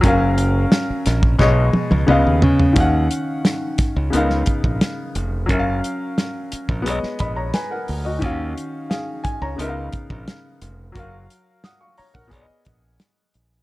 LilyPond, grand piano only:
\new Staff \with { instrumentName = "Grand piano" } { \time 4/4 \key ees \minor \tempo 4 = 88 << { r1 | r1 | r2 r8 <dis'' b''>16 <cis'' bes''>16 <b' gis''>16 <bes' fis''>8 <fis' dis''>16~ | <fis' dis''>16 r8. <aes' f''>8 aes''16 <des'' bes''>8 r4. r16 |
r4 <ges'' ees'''>16 <f'' des'''>16 <des'' bes''>16 <bes' ges''>8 r4. r16 | } \\ { <ges des' bes' f''>2 <b, gis cis'' dis''>4 <des ces' ees'' f''>4 | <ees des' f'' ges''>2 <des ces' ees' bes' f''>2 | <ges des' bes' fes'' f''>2 <gis b cis'' dis''>2 | <ees des' ges' f''>2 <des ces' ees' bes' fes'' f''>2 |
<ges ges' bes' f''>2 <b gis' cis'' d'' dis''>2 | } >> }